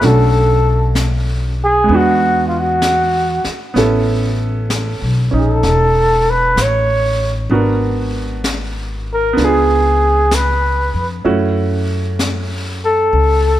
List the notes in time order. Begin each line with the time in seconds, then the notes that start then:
0.01 B1 A3 C#4 D4, brush sweep, snare
0.05 F#4 A4
0.95 brush sweep, snare, hi-hat pedal
1.64 G#4
1.84 G#3
1.88 E2 B3 D4, brush sweep
1.94 F#4
2.48 F4
2.60 F#4
2.82 brush sweep, snare, hi-hat pedal
3.44 muted upright bass stroke, snare
3.74 A1 B3 C#4 E4, brush sweep, snare
3.78 A4
4.70 brush sweep, snare, hi-hat pedal
5.02 B1
5.31 A#1 C#4 D#4
5.39 A4
5.63 E1, brush sweep, snare
6.30 B4
6.56 A1, brush sweep, snare, hi-hat pedal
6.62 C#5
7.50 G#1 B3 D4 F#4 A#4, brush sweep
8.44 brush sweep, snare, hi-hat pedal
9.14 A#4
9.33 C#2 B3 D4
9.38 F4, brush sweep, snare
9.44 G#4
10.31 B4, brush sweep, snare, hi-hat pedal
10.94 F2
11.25 F#2 A3 C#4 E4 F#4, brush sweep
12.19 brush sweep, snare, hi-hat pedal
12.85 A4
13.12 C#2, brush sweep